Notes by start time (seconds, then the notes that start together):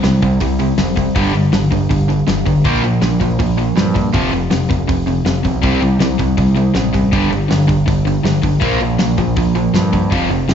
0.03 C2 C3 G3, snare, open hi-hat
0.22 C2 C3 G3, kick, open hi-hat
0.40 C2 C3 G3, kick, open hi-hat
0.60 C3 G3, open hi-hat
0.77 F1 C3 G3, snare, open hi-hat
0.96 C3 G3, kick, open hi-hat
1.15 G1 G2 D3 G3, kick, open hi-hat
1.33 G1 G2 D3, open hi-hat
1.52 G1 G2 D3, snare, open hi-hat
1.71 G1 G2 D3, kick, open hi-hat
1.89 G1 G2 D3, kick, open hi-hat
2.09 G2 D3, open hi-hat
2.28 G1 G2 D3, snare, open hi-hat
2.46 G1 G2 D3, kick, open hi-hat
2.64 A#1 A#2 F3 A#3, kick, open hi-hat
2.83 A#1 A#2 F3, open hi-hat
3.01 A#1 A#2 F3, snare, open hi-hat
3.20 A#1 A#2 F3, kick, open hi-hat
3.39 A#1 A#2 F3, kick, open hi-hat
3.58 A#2 F3, open hi-hat
3.76 G2 A#2 F3, snare, open hi-hat
3.95 A#2 F3, kick, open hi-hat
4.14 F1 F2 C3 F3, kick, open hi-hat
4.32 F1 F2 C3, open hi-hat
4.51 F1 F2 C3, snare, open hi-hat
4.69 F1 F2 C3, kick, open hi-hat
4.88 F1 F2 C3, kick, open hi-hat
5.07 F2 C3, open hi-hat
5.25 F1 F2 C3, snare, open hi-hat
5.43 B1 F2 C3, kick, open hi-hat
5.62 C2 C3 G3 C4, kick, open hi-hat
5.81 C2 C3 G3, open hi-hat
5.99 C2 C3 G3, snare, open hi-hat
6.18 C2 C3 G3, kick, open hi-hat
6.37 C2 C3 G3, kick, open hi-hat
6.55 C3 G3, open hi-hat
6.74 A1 C3 G3, snare, open hi-hat
6.93 C3 G3, kick, open hi-hat
7.12 G1 G2 D3 G3, kick, open hi-hat
7.30 G1 G2 D3, open hi-hat
7.48 G1 G2 D3, snare, open hi-hat
7.67 G1 G2 D3, kick, open hi-hat
7.86 G1 G2 D3, kick, open hi-hat
8.05 G2 D3, open hi-hat
8.23 G1 G2 D3, snare, open hi-hat
8.42 G1 G2 D3, kick, open hi-hat
8.60 A#1 A#2 F3 A#3, kick, open hi-hat
8.80 A#1 A#2 F3, open hi-hat
8.99 A#1 A#2 F3, snare, open hi-hat
9.18 A#1 A#2 F3, kick, open hi-hat
9.36 A#1 A#2 F3, kick, open hi-hat
9.55 A#2 F3, open hi-hat
9.74 G2 A#2 F3, snare, open hi-hat
9.93 A#2 F3, kick, open hi-hat
10.10 F1 F2 C3 F3, kick, open hi-hat
10.29 F1 F2 C3, open hi-hat
10.48 F1 F2 C3, snare, open hi-hat